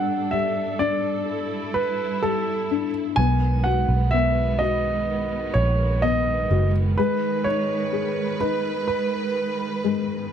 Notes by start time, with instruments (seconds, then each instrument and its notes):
Already playing: upright piano G3 D4, string section G3 D4 A4, grand piano F#5
0.31 upright piano G3, grand piano E5
0.79 upright piano D4, grand piano D5
1.27 string section E4
1.74 grand piano B4
2.23 upright piano G3, grand piano A4
2.71 upright piano D4
3.16 fingered electric bass B1, string section D#3 G#3 B3, upright piano B3, grand piano G#5
3.64 upright piano F#4, grand piano F#5
3.89 fingered electric bass B1
4.11 upright piano B3, grand piano E5
4.59 upright piano F#4, grand piano D#5
5.54 fingered electric bass A#1, grand piano C#5
6.02 upright piano B3, grand piano D#5
6.50 fingered electric bass F#1, upright piano F#4
6.98 upright piano G#3, grand piano B4, string section B4
7.44 upright piano D#4, grand piano C#5
7.93 upright piano G#4
8.40 upright piano D#4, grand piano B4
8.88 grand piano B4
9.84 upright piano G#3